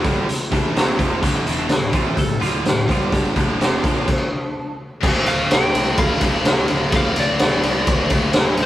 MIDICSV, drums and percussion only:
0, 0, Header, 1, 2, 480
1, 0, Start_track
1, 0, Key_signature, -1, "minor"
1, 0, Tempo, 474684
1, 1236, Time_signature, 4, 2, 24, 8
1, 8755, End_track
2, 0, Start_track
2, 0, Title_t, "Drums"
2, 46, Note_on_c, 9, 36, 100
2, 48, Note_on_c, 9, 42, 57
2, 147, Note_off_c, 9, 36, 0
2, 149, Note_off_c, 9, 42, 0
2, 292, Note_on_c, 9, 42, 73
2, 393, Note_off_c, 9, 42, 0
2, 525, Note_on_c, 9, 36, 88
2, 533, Note_on_c, 9, 42, 52
2, 626, Note_off_c, 9, 36, 0
2, 634, Note_off_c, 9, 42, 0
2, 773, Note_on_c, 9, 42, 70
2, 780, Note_on_c, 9, 38, 108
2, 874, Note_off_c, 9, 42, 0
2, 881, Note_off_c, 9, 38, 0
2, 1001, Note_on_c, 9, 36, 92
2, 1002, Note_on_c, 9, 42, 56
2, 1103, Note_off_c, 9, 36, 0
2, 1103, Note_off_c, 9, 42, 0
2, 1241, Note_on_c, 9, 36, 95
2, 1243, Note_on_c, 9, 42, 74
2, 1342, Note_off_c, 9, 36, 0
2, 1344, Note_off_c, 9, 42, 0
2, 1483, Note_on_c, 9, 42, 57
2, 1584, Note_off_c, 9, 42, 0
2, 1710, Note_on_c, 9, 42, 82
2, 1717, Note_on_c, 9, 38, 103
2, 1811, Note_off_c, 9, 42, 0
2, 1818, Note_off_c, 9, 38, 0
2, 1947, Note_on_c, 9, 42, 61
2, 1954, Note_on_c, 9, 36, 99
2, 2048, Note_off_c, 9, 42, 0
2, 2055, Note_off_c, 9, 36, 0
2, 2193, Note_on_c, 9, 42, 82
2, 2195, Note_on_c, 9, 36, 81
2, 2295, Note_off_c, 9, 42, 0
2, 2296, Note_off_c, 9, 36, 0
2, 2445, Note_on_c, 9, 42, 54
2, 2546, Note_off_c, 9, 42, 0
2, 2683, Note_on_c, 9, 42, 77
2, 2690, Note_on_c, 9, 38, 106
2, 2784, Note_off_c, 9, 42, 0
2, 2792, Note_off_c, 9, 38, 0
2, 2922, Note_on_c, 9, 36, 97
2, 2932, Note_on_c, 9, 42, 55
2, 3023, Note_off_c, 9, 36, 0
2, 3033, Note_off_c, 9, 42, 0
2, 3159, Note_on_c, 9, 36, 89
2, 3163, Note_on_c, 9, 42, 74
2, 3260, Note_off_c, 9, 36, 0
2, 3264, Note_off_c, 9, 42, 0
2, 3399, Note_on_c, 9, 36, 96
2, 3403, Note_on_c, 9, 42, 52
2, 3500, Note_off_c, 9, 36, 0
2, 3504, Note_off_c, 9, 42, 0
2, 3649, Note_on_c, 9, 42, 79
2, 3656, Note_on_c, 9, 38, 107
2, 3750, Note_off_c, 9, 42, 0
2, 3757, Note_off_c, 9, 38, 0
2, 3882, Note_on_c, 9, 36, 99
2, 3887, Note_on_c, 9, 42, 57
2, 3983, Note_off_c, 9, 36, 0
2, 3989, Note_off_c, 9, 42, 0
2, 4125, Note_on_c, 9, 36, 98
2, 4129, Note_on_c, 9, 49, 88
2, 4226, Note_off_c, 9, 36, 0
2, 4230, Note_off_c, 9, 49, 0
2, 5087, Note_on_c, 9, 36, 106
2, 5089, Note_on_c, 9, 49, 108
2, 5189, Note_off_c, 9, 36, 0
2, 5190, Note_off_c, 9, 49, 0
2, 5322, Note_on_c, 9, 51, 73
2, 5423, Note_off_c, 9, 51, 0
2, 5569, Note_on_c, 9, 51, 113
2, 5576, Note_on_c, 9, 38, 116
2, 5670, Note_off_c, 9, 51, 0
2, 5677, Note_off_c, 9, 38, 0
2, 5812, Note_on_c, 9, 51, 82
2, 5914, Note_off_c, 9, 51, 0
2, 6041, Note_on_c, 9, 51, 110
2, 6046, Note_on_c, 9, 36, 115
2, 6143, Note_off_c, 9, 51, 0
2, 6147, Note_off_c, 9, 36, 0
2, 6277, Note_on_c, 9, 51, 74
2, 6284, Note_on_c, 9, 36, 77
2, 6378, Note_off_c, 9, 51, 0
2, 6385, Note_off_c, 9, 36, 0
2, 6523, Note_on_c, 9, 51, 110
2, 6530, Note_on_c, 9, 38, 120
2, 6624, Note_off_c, 9, 51, 0
2, 6631, Note_off_c, 9, 38, 0
2, 6753, Note_on_c, 9, 51, 79
2, 6854, Note_off_c, 9, 51, 0
2, 6998, Note_on_c, 9, 51, 106
2, 7002, Note_on_c, 9, 36, 104
2, 7099, Note_off_c, 9, 51, 0
2, 7103, Note_off_c, 9, 36, 0
2, 7239, Note_on_c, 9, 51, 77
2, 7340, Note_off_c, 9, 51, 0
2, 7475, Note_on_c, 9, 51, 105
2, 7482, Note_on_c, 9, 38, 107
2, 7576, Note_off_c, 9, 51, 0
2, 7583, Note_off_c, 9, 38, 0
2, 7719, Note_on_c, 9, 51, 76
2, 7820, Note_off_c, 9, 51, 0
2, 7957, Note_on_c, 9, 51, 105
2, 7959, Note_on_c, 9, 36, 115
2, 8058, Note_off_c, 9, 51, 0
2, 8061, Note_off_c, 9, 36, 0
2, 8189, Note_on_c, 9, 51, 76
2, 8196, Note_on_c, 9, 36, 84
2, 8290, Note_off_c, 9, 51, 0
2, 8297, Note_off_c, 9, 36, 0
2, 8425, Note_on_c, 9, 51, 97
2, 8432, Note_on_c, 9, 38, 123
2, 8526, Note_off_c, 9, 51, 0
2, 8533, Note_off_c, 9, 38, 0
2, 8668, Note_on_c, 9, 51, 72
2, 8755, Note_off_c, 9, 51, 0
2, 8755, End_track
0, 0, End_of_file